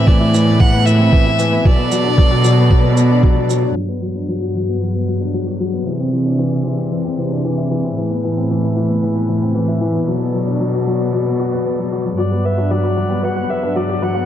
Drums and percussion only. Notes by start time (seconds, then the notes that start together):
0.07 kick
0.34 shaker
0.60 kick
0.87 shaker
1.13 kick
1.39 shaker
1.65 kick
1.92 shaker
2.18 kick
2.44 shaker
2.71 kick
2.97 shaker
3.23 kick
3.50 shaker